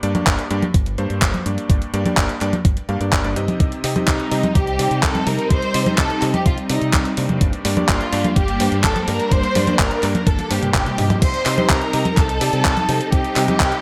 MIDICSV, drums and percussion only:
0, 0, Header, 1, 2, 480
1, 0, Start_track
1, 0, Tempo, 476190
1, 1710, Time_signature, 4, 2, 24, 8
1, 13925, End_track
2, 0, Start_track
2, 0, Title_t, "Drums"
2, 30, Note_on_c, 9, 42, 60
2, 131, Note_off_c, 9, 42, 0
2, 149, Note_on_c, 9, 42, 36
2, 149, Note_on_c, 9, 63, 73
2, 250, Note_off_c, 9, 42, 0
2, 250, Note_off_c, 9, 63, 0
2, 269, Note_on_c, 9, 36, 109
2, 270, Note_on_c, 9, 39, 124
2, 270, Note_on_c, 9, 42, 85
2, 370, Note_off_c, 9, 36, 0
2, 371, Note_off_c, 9, 39, 0
2, 371, Note_off_c, 9, 42, 0
2, 390, Note_on_c, 9, 42, 37
2, 491, Note_off_c, 9, 42, 0
2, 510, Note_on_c, 9, 42, 63
2, 610, Note_off_c, 9, 42, 0
2, 630, Note_on_c, 9, 42, 38
2, 630, Note_on_c, 9, 63, 75
2, 730, Note_off_c, 9, 42, 0
2, 730, Note_off_c, 9, 63, 0
2, 749, Note_on_c, 9, 36, 119
2, 749, Note_on_c, 9, 42, 87
2, 850, Note_off_c, 9, 36, 0
2, 850, Note_off_c, 9, 42, 0
2, 870, Note_on_c, 9, 42, 38
2, 971, Note_off_c, 9, 42, 0
2, 989, Note_on_c, 9, 42, 33
2, 1090, Note_off_c, 9, 42, 0
2, 1109, Note_on_c, 9, 42, 36
2, 1210, Note_off_c, 9, 42, 0
2, 1229, Note_on_c, 9, 36, 108
2, 1230, Note_on_c, 9, 39, 119
2, 1230, Note_on_c, 9, 42, 86
2, 1330, Note_off_c, 9, 36, 0
2, 1330, Note_off_c, 9, 39, 0
2, 1330, Note_off_c, 9, 42, 0
2, 1351, Note_on_c, 9, 42, 37
2, 1351, Note_on_c, 9, 63, 76
2, 1451, Note_off_c, 9, 42, 0
2, 1451, Note_off_c, 9, 63, 0
2, 1471, Note_on_c, 9, 42, 62
2, 1572, Note_off_c, 9, 42, 0
2, 1592, Note_on_c, 9, 42, 36
2, 1692, Note_off_c, 9, 42, 0
2, 1710, Note_on_c, 9, 36, 121
2, 1711, Note_on_c, 9, 42, 83
2, 1811, Note_off_c, 9, 36, 0
2, 1812, Note_off_c, 9, 42, 0
2, 1832, Note_on_c, 9, 42, 36
2, 1933, Note_off_c, 9, 42, 0
2, 1952, Note_on_c, 9, 42, 59
2, 2053, Note_off_c, 9, 42, 0
2, 2072, Note_on_c, 9, 42, 35
2, 2072, Note_on_c, 9, 63, 76
2, 2173, Note_off_c, 9, 42, 0
2, 2173, Note_off_c, 9, 63, 0
2, 2190, Note_on_c, 9, 36, 108
2, 2190, Note_on_c, 9, 39, 120
2, 2190, Note_on_c, 9, 42, 83
2, 2291, Note_off_c, 9, 36, 0
2, 2291, Note_off_c, 9, 39, 0
2, 2291, Note_off_c, 9, 42, 0
2, 2311, Note_on_c, 9, 42, 36
2, 2412, Note_off_c, 9, 42, 0
2, 2431, Note_on_c, 9, 39, 37
2, 2431, Note_on_c, 9, 42, 60
2, 2532, Note_off_c, 9, 39, 0
2, 2532, Note_off_c, 9, 42, 0
2, 2551, Note_on_c, 9, 42, 36
2, 2551, Note_on_c, 9, 63, 78
2, 2652, Note_off_c, 9, 42, 0
2, 2652, Note_off_c, 9, 63, 0
2, 2670, Note_on_c, 9, 36, 117
2, 2671, Note_on_c, 9, 42, 88
2, 2771, Note_off_c, 9, 36, 0
2, 2772, Note_off_c, 9, 42, 0
2, 2790, Note_on_c, 9, 42, 35
2, 2891, Note_off_c, 9, 42, 0
2, 2910, Note_on_c, 9, 42, 33
2, 3011, Note_off_c, 9, 42, 0
2, 3031, Note_on_c, 9, 42, 35
2, 3131, Note_off_c, 9, 42, 0
2, 3150, Note_on_c, 9, 36, 104
2, 3151, Note_on_c, 9, 39, 116
2, 3151, Note_on_c, 9, 42, 83
2, 3251, Note_off_c, 9, 36, 0
2, 3252, Note_off_c, 9, 39, 0
2, 3252, Note_off_c, 9, 42, 0
2, 3271, Note_on_c, 9, 42, 36
2, 3371, Note_off_c, 9, 42, 0
2, 3391, Note_on_c, 9, 42, 63
2, 3491, Note_off_c, 9, 42, 0
2, 3510, Note_on_c, 9, 42, 36
2, 3510, Note_on_c, 9, 63, 73
2, 3611, Note_off_c, 9, 42, 0
2, 3611, Note_off_c, 9, 63, 0
2, 3630, Note_on_c, 9, 36, 116
2, 3630, Note_on_c, 9, 42, 86
2, 3731, Note_off_c, 9, 36, 0
2, 3731, Note_off_c, 9, 42, 0
2, 3750, Note_on_c, 9, 42, 37
2, 3851, Note_off_c, 9, 42, 0
2, 3869, Note_on_c, 9, 46, 101
2, 3970, Note_off_c, 9, 46, 0
2, 3990, Note_on_c, 9, 42, 36
2, 3990, Note_on_c, 9, 63, 79
2, 4090, Note_off_c, 9, 42, 0
2, 4090, Note_off_c, 9, 63, 0
2, 4109, Note_on_c, 9, 39, 114
2, 4109, Note_on_c, 9, 42, 87
2, 4110, Note_on_c, 9, 36, 105
2, 4209, Note_off_c, 9, 39, 0
2, 4209, Note_off_c, 9, 42, 0
2, 4211, Note_off_c, 9, 36, 0
2, 4230, Note_on_c, 9, 42, 37
2, 4331, Note_off_c, 9, 42, 0
2, 4349, Note_on_c, 9, 46, 90
2, 4450, Note_off_c, 9, 46, 0
2, 4470, Note_on_c, 9, 42, 37
2, 4470, Note_on_c, 9, 63, 80
2, 4571, Note_off_c, 9, 42, 0
2, 4571, Note_off_c, 9, 63, 0
2, 4589, Note_on_c, 9, 42, 89
2, 4590, Note_on_c, 9, 36, 112
2, 4690, Note_off_c, 9, 42, 0
2, 4691, Note_off_c, 9, 36, 0
2, 4711, Note_on_c, 9, 42, 36
2, 4812, Note_off_c, 9, 42, 0
2, 4830, Note_on_c, 9, 46, 100
2, 4931, Note_off_c, 9, 46, 0
2, 4951, Note_on_c, 9, 42, 36
2, 5051, Note_off_c, 9, 42, 0
2, 5070, Note_on_c, 9, 36, 101
2, 5070, Note_on_c, 9, 39, 114
2, 5070, Note_on_c, 9, 42, 84
2, 5171, Note_off_c, 9, 36, 0
2, 5171, Note_off_c, 9, 39, 0
2, 5171, Note_off_c, 9, 42, 0
2, 5190, Note_on_c, 9, 42, 38
2, 5190, Note_on_c, 9, 63, 78
2, 5291, Note_off_c, 9, 42, 0
2, 5291, Note_off_c, 9, 63, 0
2, 5309, Note_on_c, 9, 46, 92
2, 5410, Note_off_c, 9, 46, 0
2, 5429, Note_on_c, 9, 42, 36
2, 5530, Note_off_c, 9, 42, 0
2, 5549, Note_on_c, 9, 42, 88
2, 5550, Note_on_c, 9, 36, 110
2, 5649, Note_off_c, 9, 42, 0
2, 5651, Note_off_c, 9, 36, 0
2, 5669, Note_on_c, 9, 42, 38
2, 5770, Note_off_c, 9, 42, 0
2, 5789, Note_on_c, 9, 46, 106
2, 5890, Note_off_c, 9, 46, 0
2, 5910, Note_on_c, 9, 42, 37
2, 5910, Note_on_c, 9, 63, 79
2, 6011, Note_off_c, 9, 42, 0
2, 6011, Note_off_c, 9, 63, 0
2, 6029, Note_on_c, 9, 39, 114
2, 6029, Note_on_c, 9, 42, 89
2, 6030, Note_on_c, 9, 36, 100
2, 6129, Note_off_c, 9, 39, 0
2, 6129, Note_off_c, 9, 42, 0
2, 6130, Note_off_c, 9, 36, 0
2, 6149, Note_on_c, 9, 42, 37
2, 6250, Note_off_c, 9, 42, 0
2, 6269, Note_on_c, 9, 39, 35
2, 6269, Note_on_c, 9, 46, 93
2, 6369, Note_off_c, 9, 39, 0
2, 6369, Note_off_c, 9, 46, 0
2, 6390, Note_on_c, 9, 42, 37
2, 6390, Note_on_c, 9, 63, 82
2, 6491, Note_off_c, 9, 42, 0
2, 6491, Note_off_c, 9, 63, 0
2, 6509, Note_on_c, 9, 42, 91
2, 6510, Note_on_c, 9, 36, 112
2, 6609, Note_off_c, 9, 42, 0
2, 6610, Note_off_c, 9, 36, 0
2, 6629, Note_on_c, 9, 42, 37
2, 6730, Note_off_c, 9, 42, 0
2, 6749, Note_on_c, 9, 46, 106
2, 6850, Note_off_c, 9, 46, 0
2, 6870, Note_on_c, 9, 42, 37
2, 6970, Note_off_c, 9, 42, 0
2, 6989, Note_on_c, 9, 39, 112
2, 6989, Note_on_c, 9, 42, 88
2, 6990, Note_on_c, 9, 36, 98
2, 7090, Note_off_c, 9, 39, 0
2, 7090, Note_off_c, 9, 42, 0
2, 7091, Note_off_c, 9, 36, 0
2, 7109, Note_on_c, 9, 42, 38
2, 7210, Note_off_c, 9, 42, 0
2, 7229, Note_on_c, 9, 46, 93
2, 7330, Note_off_c, 9, 46, 0
2, 7350, Note_on_c, 9, 42, 37
2, 7350, Note_on_c, 9, 63, 78
2, 7450, Note_off_c, 9, 42, 0
2, 7450, Note_off_c, 9, 63, 0
2, 7469, Note_on_c, 9, 42, 92
2, 7470, Note_on_c, 9, 36, 110
2, 7570, Note_off_c, 9, 42, 0
2, 7571, Note_off_c, 9, 36, 0
2, 7591, Note_on_c, 9, 42, 39
2, 7692, Note_off_c, 9, 42, 0
2, 7710, Note_on_c, 9, 46, 108
2, 7811, Note_off_c, 9, 46, 0
2, 7830, Note_on_c, 9, 42, 39
2, 7830, Note_on_c, 9, 63, 76
2, 7931, Note_off_c, 9, 42, 0
2, 7931, Note_off_c, 9, 63, 0
2, 7950, Note_on_c, 9, 36, 97
2, 7950, Note_on_c, 9, 39, 109
2, 7950, Note_on_c, 9, 42, 91
2, 8051, Note_off_c, 9, 36, 0
2, 8051, Note_off_c, 9, 39, 0
2, 8051, Note_off_c, 9, 42, 0
2, 8071, Note_on_c, 9, 42, 39
2, 8171, Note_off_c, 9, 42, 0
2, 8190, Note_on_c, 9, 46, 97
2, 8291, Note_off_c, 9, 46, 0
2, 8311, Note_on_c, 9, 42, 40
2, 8311, Note_on_c, 9, 63, 77
2, 8412, Note_off_c, 9, 42, 0
2, 8412, Note_off_c, 9, 63, 0
2, 8429, Note_on_c, 9, 42, 92
2, 8430, Note_on_c, 9, 36, 109
2, 8530, Note_off_c, 9, 36, 0
2, 8530, Note_off_c, 9, 42, 0
2, 8549, Note_on_c, 9, 42, 39
2, 8650, Note_off_c, 9, 42, 0
2, 8669, Note_on_c, 9, 46, 109
2, 8770, Note_off_c, 9, 46, 0
2, 8789, Note_on_c, 9, 42, 39
2, 8890, Note_off_c, 9, 42, 0
2, 8909, Note_on_c, 9, 36, 100
2, 8909, Note_on_c, 9, 39, 113
2, 8909, Note_on_c, 9, 42, 94
2, 9010, Note_off_c, 9, 36, 0
2, 9010, Note_off_c, 9, 39, 0
2, 9010, Note_off_c, 9, 42, 0
2, 9030, Note_on_c, 9, 42, 40
2, 9030, Note_on_c, 9, 63, 81
2, 9130, Note_off_c, 9, 42, 0
2, 9130, Note_off_c, 9, 63, 0
2, 9149, Note_on_c, 9, 46, 98
2, 9250, Note_off_c, 9, 46, 0
2, 9270, Note_on_c, 9, 42, 38
2, 9370, Note_off_c, 9, 42, 0
2, 9389, Note_on_c, 9, 36, 114
2, 9391, Note_on_c, 9, 42, 92
2, 9490, Note_off_c, 9, 36, 0
2, 9491, Note_off_c, 9, 42, 0
2, 9510, Note_on_c, 9, 42, 41
2, 9611, Note_off_c, 9, 42, 0
2, 9630, Note_on_c, 9, 46, 107
2, 9630, Note_on_c, 9, 63, 59
2, 9731, Note_off_c, 9, 46, 0
2, 9731, Note_off_c, 9, 63, 0
2, 9750, Note_on_c, 9, 42, 41
2, 9750, Note_on_c, 9, 63, 75
2, 9851, Note_off_c, 9, 42, 0
2, 9851, Note_off_c, 9, 63, 0
2, 9869, Note_on_c, 9, 36, 100
2, 9870, Note_on_c, 9, 39, 115
2, 9870, Note_on_c, 9, 42, 96
2, 9970, Note_off_c, 9, 36, 0
2, 9970, Note_off_c, 9, 39, 0
2, 9970, Note_off_c, 9, 42, 0
2, 9989, Note_on_c, 9, 42, 40
2, 10090, Note_off_c, 9, 42, 0
2, 10109, Note_on_c, 9, 39, 35
2, 10109, Note_on_c, 9, 46, 95
2, 10210, Note_off_c, 9, 39, 0
2, 10210, Note_off_c, 9, 46, 0
2, 10230, Note_on_c, 9, 42, 40
2, 10230, Note_on_c, 9, 63, 75
2, 10331, Note_off_c, 9, 42, 0
2, 10331, Note_off_c, 9, 63, 0
2, 10349, Note_on_c, 9, 36, 111
2, 10349, Note_on_c, 9, 42, 97
2, 10349, Note_on_c, 9, 48, 62
2, 10450, Note_off_c, 9, 36, 0
2, 10450, Note_off_c, 9, 42, 0
2, 10450, Note_off_c, 9, 48, 0
2, 10470, Note_on_c, 9, 42, 42
2, 10470, Note_on_c, 9, 48, 56
2, 10571, Note_off_c, 9, 42, 0
2, 10571, Note_off_c, 9, 48, 0
2, 10590, Note_on_c, 9, 46, 101
2, 10691, Note_off_c, 9, 46, 0
2, 10711, Note_on_c, 9, 42, 41
2, 10711, Note_on_c, 9, 47, 64
2, 10812, Note_off_c, 9, 42, 0
2, 10812, Note_off_c, 9, 47, 0
2, 10829, Note_on_c, 9, 36, 99
2, 10830, Note_on_c, 9, 39, 112
2, 10830, Note_on_c, 9, 42, 91
2, 10830, Note_on_c, 9, 47, 82
2, 10930, Note_off_c, 9, 36, 0
2, 10930, Note_off_c, 9, 39, 0
2, 10930, Note_off_c, 9, 42, 0
2, 10930, Note_off_c, 9, 47, 0
2, 10950, Note_on_c, 9, 42, 41
2, 10950, Note_on_c, 9, 47, 77
2, 11051, Note_off_c, 9, 42, 0
2, 11051, Note_off_c, 9, 47, 0
2, 11070, Note_on_c, 9, 45, 99
2, 11070, Note_on_c, 9, 46, 94
2, 11171, Note_off_c, 9, 45, 0
2, 11171, Note_off_c, 9, 46, 0
2, 11190, Note_on_c, 9, 42, 40
2, 11190, Note_on_c, 9, 45, 84
2, 11190, Note_on_c, 9, 63, 74
2, 11291, Note_off_c, 9, 42, 0
2, 11291, Note_off_c, 9, 45, 0
2, 11291, Note_off_c, 9, 63, 0
2, 11309, Note_on_c, 9, 36, 117
2, 11310, Note_on_c, 9, 42, 95
2, 11310, Note_on_c, 9, 49, 103
2, 11410, Note_off_c, 9, 36, 0
2, 11411, Note_off_c, 9, 42, 0
2, 11411, Note_off_c, 9, 49, 0
2, 11430, Note_on_c, 9, 42, 41
2, 11531, Note_off_c, 9, 42, 0
2, 11550, Note_on_c, 9, 39, 63
2, 11550, Note_on_c, 9, 46, 109
2, 11651, Note_off_c, 9, 39, 0
2, 11651, Note_off_c, 9, 46, 0
2, 11670, Note_on_c, 9, 42, 40
2, 11670, Note_on_c, 9, 63, 75
2, 11771, Note_off_c, 9, 42, 0
2, 11771, Note_off_c, 9, 63, 0
2, 11789, Note_on_c, 9, 36, 106
2, 11789, Note_on_c, 9, 39, 124
2, 11789, Note_on_c, 9, 42, 97
2, 11890, Note_off_c, 9, 36, 0
2, 11890, Note_off_c, 9, 39, 0
2, 11890, Note_off_c, 9, 42, 0
2, 11910, Note_on_c, 9, 42, 41
2, 12010, Note_off_c, 9, 42, 0
2, 12029, Note_on_c, 9, 46, 93
2, 12130, Note_off_c, 9, 46, 0
2, 12149, Note_on_c, 9, 42, 41
2, 12149, Note_on_c, 9, 63, 74
2, 12250, Note_off_c, 9, 42, 0
2, 12250, Note_off_c, 9, 63, 0
2, 12269, Note_on_c, 9, 36, 120
2, 12270, Note_on_c, 9, 39, 56
2, 12270, Note_on_c, 9, 42, 99
2, 12370, Note_off_c, 9, 36, 0
2, 12371, Note_off_c, 9, 39, 0
2, 12371, Note_off_c, 9, 42, 0
2, 12390, Note_on_c, 9, 42, 41
2, 12491, Note_off_c, 9, 42, 0
2, 12510, Note_on_c, 9, 46, 103
2, 12611, Note_off_c, 9, 46, 0
2, 12631, Note_on_c, 9, 42, 42
2, 12732, Note_off_c, 9, 42, 0
2, 12749, Note_on_c, 9, 36, 107
2, 12750, Note_on_c, 9, 39, 120
2, 12750, Note_on_c, 9, 42, 97
2, 12850, Note_off_c, 9, 36, 0
2, 12851, Note_off_c, 9, 39, 0
2, 12851, Note_off_c, 9, 42, 0
2, 12871, Note_on_c, 9, 42, 41
2, 12871, Note_on_c, 9, 63, 78
2, 12972, Note_off_c, 9, 42, 0
2, 12972, Note_off_c, 9, 63, 0
2, 12990, Note_on_c, 9, 46, 97
2, 13091, Note_off_c, 9, 46, 0
2, 13111, Note_on_c, 9, 42, 41
2, 13212, Note_off_c, 9, 42, 0
2, 13229, Note_on_c, 9, 36, 123
2, 13230, Note_on_c, 9, 42, 93
2, 13330, Note_off_c, 9, 36, 0
2, 13331, Note_off_c, 9, 42, 0
2, 13351, Note_on_c, 9, 42, 40
2, 13451, Note_off_c, 9, 42, 0
2, 13470, Note_on_c, 9, 39, 63
2, 13470, Note_on_c, 9, 46, 105
2, 13570, Note_off_c, 9, 39, 0
2, 13570, Note_off_c, 9, 46, 0
2, 13591, Note_on_c, 9, 42, 40
2, 13591, Note_on_c, 9, 63, 75
2, 13691, Note_off_c, 9, 42, 0
2, 13691, Note_off_c, 9, 63, 0
2, 13709, Note_on_c, 9, 36, 111
2, 13709, Note_on_c, 9, 39, 126
2, 13709, Note_on_c, 9, 42, 96
2, 13810, Note_off_c, 9, 36, 0
2, 13810, Note_off_c, 9, 39, 0
2, 13810, Note_off_c, 9, 42, 0
2, 13829, Note_on_c, 9, 42, 40
2, 13925, Note_off_c, 9, 42, 0
2, 13925, End_track
0, 0, End_of_file